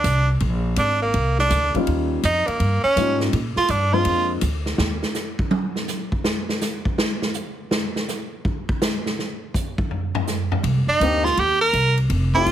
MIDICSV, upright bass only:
0, 0, Header, 1, 3, 480
1, 0, Start_track
1, 0, Tempo, 365631
1, 532, Time_signature, 4, 2, 24, 8
1, 16435, End_track
2, 0, Start_track
2, 0, Title_t, "Upright bass"
2, 0, Program_c, 0, 32
2, 51, Note_on_c, 0, 36, 76
2, 516, Note_off_c, 0, 36, 0
2, 532, Note_on_c, 0, 34, 82
2, 997, Note_off_c, 0, 34, 0
2, 1012, Note_on_c, 0, 32, 80
2, 1477, Note_off_c, 0, 32, 0
2, 1495, Note_on_c, 0, 36, 78
2, 1958, Note_off_c, 0, 36, 0
2, 1974, Note_on_c, 0, 38, 79
2, 2265, Note_off_c, 0, 38, 0
2, 2454, Note_on_c, 0, 39, 85
2, 2917, Note_off_c, 0, 39, 0
2, 2933, Note_on_c, 0, 41, 83
2, 3224, Note_off_c, 0, 41, 0
2, 3408, Note_on_c, 0, 43, 69
2, 3701, Note_off_c, 0, 43, 0
2, 3888, Note_on_c, 0, 44, 76
2, 4354, Note_off_c, 0, 44, 0
2, 4367, Note_on_c, 0, 46, 80
2, 4661, Note_off_c, 0, 46, 0
2, 4839, Note_on_c, 0, 43, 75
2, 5310, Note_off_c, 0, 43, 0
2, 5319, Note_on_c, 0, 41, 77
2, 5790, Note_off_c, 0, 41, 0
2, 5798, Note_on_c, 0, 38, 78
2, 6269, Note_off_c, 0, 38, 0
2, 6277, Note_on_c, 0, 39, 84
2, 6576, Note_off_c, 0, 39, 0
2, 13959, Note_on_c, 0, 36, 77
2, 14257, Note_off_c, 0, 36, 0
2, 14443, Note_on_c, 0, 38, 80
2, 14911, Note_off_c, 0, 38, 0
2, 14930, Note_on_c, 0, 39, 76
2, 15395, Note_off_c, 0, 39, 0
2, 15401, Note_on_c, 0, 36, 77
2, 15870, Note_off_c, 0, 36, 0
2, 15879, Note_on_c, 0, 29, 85
2, 16349, Note_off_c, 0, 29, 0
2, 16360, Note_on_c, 0, 33, 82
2, 16435, Note_off_c, 0, 33, 0
2, 16435, End_track
3, 0, Start_track
3, 0, Title_t, "Muted upright bass strokes"
3, 2288, Note_on_c, 9, 29, 36
3, 2420, Note_off_c, 9, 29, 0
3, 3249, Note_on_c, 9, 29, 35
3, 3380, Note_off_c, 9, 29, 0
3, 3727, Note_on_c, 9, 29, 38
3, 3858, Note_off_c, 9, 29, 0
3, 4678, Note_on_c, 9, 29, 39
3, 4810, Note_off_c, 9, 29, 0
3, 14268, Note_on_c, 9, 29, 37
3, 14399, Note_off_c, 9, 29, 0
3, 16435, End_track
0, 0, End_of_file